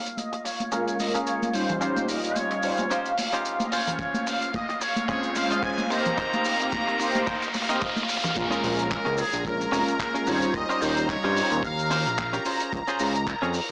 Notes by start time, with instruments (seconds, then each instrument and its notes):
Already playing: trumpet section F5, analog synth pad F5, riser
0.06 closed hi-hat, shaker
0.17 trumpet section D#5, closed hi-hat, high conga, shaker
0.33 muted clean electric guitar stroke, closed hi-hat
0.45 trumpet section C#5, muted clean electric guitar stroke, open hi-hat, mid tom, shaker
0.60 closed hi-hat, high conga, shaker
0.72 analog polysynth G#3 A#3 C#4 F4 A#4, clean electric guitar C#4 G#4 A#4, trumpet section C#5, closed hi-hat, mid tom, shaker
0.88 closed hi-hat, shaker
0.99 analog polysynth G#3 A#3 C#4 F4 A#4, trumpet section D#5, open hi-hat, high conga, shaker
1.14 clean electric guitar C#4 G#4 A#4, closed hi-hat, mid tom, shaker
1.27 trumpet section C#5, closed hi-hat, shaker
1.42 closed hi-hat, high conga, shaker
1.48 trumpet section C#5
1.54 analog polysynth G3 C#4 D#4 F4 C5, trumpet section C5, open hi-hat, mid tom, shaker
1.69 closed hi-hat, low conga, shaker
1.81 clean electric guitar C#4 D#4 F4 G4 C5, closed hi-hat, mid tom, shaker
1.96 closed hi-hat, high conga, shaker
2.08 analog polysynth G3 C#4 D#4 F4 D#5, trumpet section A#4, open hi-hat, shaker
2.24 analog polysynth G3 C#4 D#4 F4 D#5, closed hi-hat, shaker
2.36 trumpet section C#5, closed hi-hat, high conga, shaker
2.51 muted clean electric guitar stroke, closed hi-hat
2.63 analog polysynth G3 C#4 D#4 F4 C5, muted clean electric guitar stroke, open hi-hat, mid tom, shaker
2.78 closed hi-hat, high conga, shaker
2.90 clean electric guitar C#4 D#4 F4 G4 C5, closed hi-hat, mid tom, shaker
3.06 closed hi-hat, shaker
3.18 open hi-hat, high conga, shaker
3.32 clean electric guitar C#4 D#4 F4 G4 C5, closed hi-hat, mid tom, shaker
3.45 closed hi-hat, shaker
3.60 closed hi-hat, high conga, shaker
3.66 trumpet section D#5
3.72 clean electric guitar C#4 F4 C5, trumpet section C#5, open hi-hat, mid tom, shaker
3.87 closed hi-hat, low conga, shaker
3.99 kick, closed hi-hat, mid tom, shaker
4.14 closed hi-hat, high conga, shaker
4.27 trumpet section F5, open hi-hat, mid tom, shaker
4.42 closed hi-hat, shaker
4.54 trumpet section D#5, kick, closed hi-hat, mid tom, high conga, shaker
4.69 muted clean electric guitar stroke, closed hi-hat
4.81 trumpet section C#5, muted clean electric guitar stroke, open hi-hat, mid tom, shaker
4.96 closed hi-hat, high conga, shaker
5.08 analog polysynth G#3 C4 C#4 F4 C5, clean electric guitar C#4 F4 G#4, trumpet section C#5, kick, closed hi-hat, mid tom, shaker
5.23 closed hi-hat, shaker
5.35 analog polysynth G#3 C#4 F4 C5, trumpet section F5, open hi-hat, mid tom, high conga, shaker
5.51 clean electric guitar C#4 F4 D#5, closed hi-hat, shaker
5.63 trumpet section G#5, kick, closed hi-hat, mid tom, shaker
5.78 closed hi-hat, high conga, shaker
5.90 analog polysynth A#3 C4 D#4 G4 C5, trumpet section A#5, open hi-hat, mid tom, shaker
6.06 closed hi-hat, low conga, shaker
6.17 clean electric guitar D#4 A#4 C5, kick, closed hi-hat, mid tom, shaker
6.33 closed hi-hat, mid tom, high conga, shaker
6.45 analog polysynth A#3 C4 D#4 G4 F5, open hi-hat, mid tom, shaker
6.60 analog polysynth A#3 C4 D#4 G4 F5, closed hi-hat, mid tom, shaker
6.72 kick, closed hi-hat, mid tom, high conga, shaker
6.87 muted clean electric guitar stroke, closed hi-hat, mid tom
6.99 analog polysynth A#3 C4 D#4 G4 C5, muted clean electric guitar stroke, open hi-hat, mid tom, shaker
7.15 closed hi-hat, mid tom, high conga, shaker
7.27 clean electric guitar D#4 A#4 C5, kick, closed hi-hat, mid tom, shaker
7.35 mid tom
7.42 closed hi-hat, mid tom, shaker
7.48 mid tom
7.54 open hi-hat, mid tom, high conga, shaker
7.62 mid tom
7.69 analog polysynth A#3 C4 D#4 G4 C5, clean electric guitar D#4 A#4 D#5, closed hi-hat, mid tom, shaker
7.76 mid tom
7.82 kick, closed hi-hat, mid tom, shaker
7.90 mid tom
7.96 closed hi-hat, mid tom, high conga, shaker
8.03 mid tom
8.09 open hi-hat, mid tom, shaker
8.17 mid tom
8.24 closed hi-hat, mid tom, low conga, shaker
8.30 mid tom
8.35 analog synth bass A#1, analog polysynth G#3 A#3 C#4 F4 A#4, trumpet section A#4, analog synth pad A#5, kick, closed hi-hat, crash, sub drop, shaker
8.51 clean electric guitar C#4 F4 G#4 A#4, closed hi-hat, shaker
8.64 analog synth bass A#1, open hi-hat, shaker
8.79 closed hi-hat, shaker
8.91 trumpet section A#4, kick, clap, closed hi-hat, shaker
9.05 analog synth bass C#2, clean electric guitar C#4 F4 G#4 A#4, closed hi-hat
9.18 trumpet section G#4, open hi-hat, shaker
9.33 analog synth bass A#1, muted clean electric guitar stroke, closed hi-hat, shaker
9.45 analog polysynth G#3 A#3 C#4 F4 A#4, trumpet section A#4, kick, closed hi-hat, shaker
9.61 closed hi-hat, shaker
9.72 analog synth bass F1, analog polysynth G#3 A#3 C#4 F4 A#4, clean electric guitar C#4 F4 G#4 A#4, open hi-hat, shaker
9.88 closed hi-hat, shaker
9.99 trumpet section A#4, kick, clap, closed hi-hat, shaker
10.14 clean electric guitar C#4 F4 G#4 A#4, closed hi-hat, shaker
10.27 analog synth bass G#1, analog polysynth G3 C#4 D#4 F4 C5, trumpet section C#5, open hi-hat, shaker
10.42 closed hi-hat, shaker
10.54 analog synth bass D#2, trumpet section D#5, kick, closed hi-hat, shaker
10.69 clean electric guitar C#4 F4 G4 C5, closed hi-hat, shaker
10.81 analog synth bass D#2, analog polysynth G3 C#4 D#4 F4 D#5, trumpet section C5, open hi-hat, shaker
10.97 analog polysynth G3 C#4 D#4 F4 D#5, closed hi-hat, shaker
11.09 trumpet section C#5, kick, clap, closed hi-hat, shaker
11.24 analog synth bass G2, clean electric guitar C#4 F4 G4 C5, closed hi-hat
11.36 analog polysynth G3 C#4 D#4 F4 C5, open hi-hat, shaker
11.51 analog synth bass D#2, muted clean electric guitar stroke, closed hi-hat, shaker
11.63 trumpet section F5, kick, closed hi-hat, shaker
11.79 closed hi-hat, shaker
11.90 clean electric guitar C#4 F4 G4 C5, open hi-hat, shaker
12.06 analog synth bass A#1, closed hi-hat, shaker
12.18 kick, clap, closed hi-hat, shaker
12.33 clean electric guitar C#4 F4 G4 A#4, closed hi-hat, shaker
12.45 clean electric guitar C#4 F4 G#4 C5, open hi-hat, shaker
12.60 closed hi-hat, shaker
12.73 analog synth bass C#2, kick, closed hi-hat, shaker
12.88 clean electric guitar C#4 F4 G#4 C5, closed hi-hat, shaker
12.99 analog synth bass C#2, open hi-hat, shaker
13.16 closed hi-hat, shaker
13.27 kick, clap, closed hi-hat, shaker
13.42 analog synth bass F2, clean electric guitar C#4 F4 G#4 C#5, closed hi-hat
13.54 open hi-hat, shaker